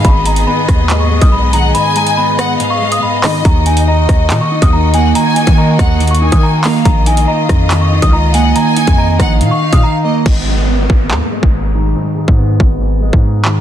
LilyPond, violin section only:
\new Staff \with { instrumentName = "Violin section" } { \time 4/4 \key aes \dorian \tempo 4 = 141 r2. r8 ges''8 | aes''4. ges''8 f''4. ees''8 | r2. r8 ges''8 | aes''4. ges''4 aes''4 f''8 |
r2. r8 ges''8 | aes''4. ges''8 f''4. ees''8 | r1 | r1 | }